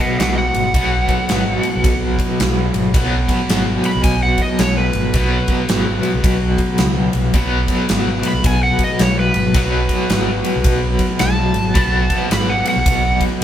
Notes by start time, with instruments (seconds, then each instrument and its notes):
Already playing: overdriven electric guitar B2 F#3 B3
0.00 electric slide guitar D#5 F#5
0.19 fingered electric bass B1, electric slide guitar D#5 F#5, snare, ride
0.38 electric slide guitar F#5
0.54 fingered electric bass G#1, ride
0.74 fingered electric bass B1, overdriven electric guitar B2 F#3 B3, kick, ride
1.09 kick, ride
1.29 fingered electric bass G#1, snare, ride
1.63 ride
1.75 fingered electric bass B1
1.84 fingered electric bass B1, kick, ride
2.19 kick, ride
2.40 fingered electric bass B1, snare, ride
2.74 fingered electric bass G#1, ride
2.94 fingered electric bass B1, overdriven electric guitar B2 F#3 B3, kick, ride
3.29 kick, ride
3.49 fingered electric bass G#1, snare, ride
3.84 electric slide guitar B5, ride
3.95 fingered electric bass B1
4.04 fingered electric bass B1, electric slide guitar G#5, kick, ride
4.23 electric slide guitar F#5
4.38 electric slide guitar D#5, kick, ride
4.59 fingered electric bass B1, electric slide guitar C#5, snare, ride
4.77 electric slide guitar B4
4.93 fingered electric bass G#1, ride
5.13 fingered electric bass B1, overdriven electric guitar B2 F#3 B3, kick, ride
5.48 kick, ride
5.69 fingered electric bass G#1, snare, ride
6.03 ride
6.14 fingered electric bass B1
6.24 fingered electric bass B1, kick, ride
6.58 kick, ride
6.78 fingered electric bass C#2, snare, ride
7.13 fingered electric bass B1, ride
7.34 fingered electric bass B1, overdriven electric guitar B2 F#3 B3, kick, ride
7.68 kick, ride
7.89 fingered electric bass G#1, snare, ride
8.23 ride
8.28 electric slide guitar B5
8.33 fingered electric bass B1
8.44 fingered electric bass B1, electric slide guitar G#5, kick, ride
8.63 electric slide guitar F#5
8.79 kick, ride
8.84 electric slide guitar D#5
8.99 fingered electric bass B1, electric slide guitar C#5, snare, ride
9.20 electric slide guitar B4
9.34 fingered electric bass G#1, ride
9.54 fingered electric bass B1, overdriven electric guitar B2 F#3 B3, kick, ride
9.89 kick, ride
10.10 fingered electric bass G#1, snare, ride
10.44 ride
10.56 fingered electric bass B1
10.64 fingered electric bass B1, kick, ride
10.99 kick, ride
11.19 fingered electric bass B1, electric slide guitar A5, snare, ride
11.54 fingered electric bass G#1, ride
11.74 fingered electric bass B1, overdriven electric guitar B2 F#3 B3, kick, ride
12.10 kick, ride
12.30 fingered electric bass G#1, electric slide guitar B5, snare, ride
12.49 electric slide guitar F#5
12.66 electric slide guitar F#5, ride
12.76 fingered electric bass B1
12.86 fingered electric bass B1, kick, ride
13.21 kick, ride